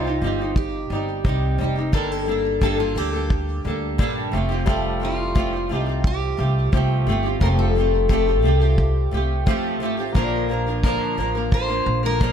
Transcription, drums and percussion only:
0.56 kick
1.25 kick
1.93 kick
2.62 kick
3.30 kick
3.99 kick
4.67 kick
5.36 kick
6.04 kick
6.73 kick
7.41 kick
8.09 kick
8.78 kick
9.47 kick
10.15 kick
10.84 kick
11.52 kick
12.21 kick

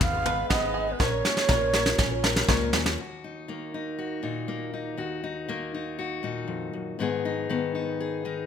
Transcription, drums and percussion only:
0.01 kick, floor tom
0.26 floor tom
0.50 kick, snare
1.00 kick, snare
1.25 snare
1.37 snare
1.49 kick, snare
1.73 snare
1.86 snare
1.98 kick, snare
2.24 snare
2.36 snare
2.48 kick, snare
2.73 snare
2.86 snare

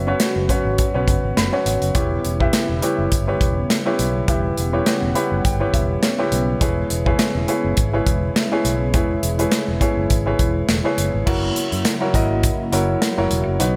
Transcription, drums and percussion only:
0.20 snare, closed hi-hat
0.49 kick, closed hi-hat
0.78 kick, closed hi-hat
1.08 kick, closed hi-hat
1.37 snare, closed hi-hat
1.66 closed hi-hat
1.82 closed hi-hat
1.95 kick, closed hi-hat
2.25 closed hi-hat
2.40 kick
2.53 snare, closed hi-hat
2.82 closed hi-hat
3.12 kick, closed hi-hat
3.41 kick, closed hi-hat
3.70 snare, closed hi-hat
3.99 closed hi-hat
4.28 kick, closed hi-hat
4.57 closed hi-hat
4.86 snare, closed hi-hat
5.15 closed hi-hat
5.45 kick, closed hi-hat
5.74 kick, closed hi-hat
6.03 snare, closed hi-hat
6.32 closed hi-hat
6.61 kick, closed hi-hat
6.90 closed hi-hat
7.06 kick
7.19 snare, closed hi-hat
7.48 closed hi-hat
7.77 kick, closed hi-hat
8.07 kick, closed hi-hat
8.36 snare, closed hi-hat
8.65 closed hi-hat
8.94 kick, closed hi-hat
9.23 closed hi-hat
9.39 closed hi-hat
9.52 snare, closed hi-hat
9.81 kick, closed hi-hat
10.10 kick, closed hi-hat
10.39 kick, closed hi-hat
10.69 snare, closed hi-hat
10.98 closed hi-hat
11.27 kick, crash
11.56 closed hi-hat
11.72 closed hi-hat
11.85 snare, closed hi-hat
12.14 kick, closed hi-hat
12.43 kick, closed hi-hat
12.73 closed hi-hat
13.02 snare, closed hi-hat
13.31 closed hi-hat
13.60 closed hi-hat

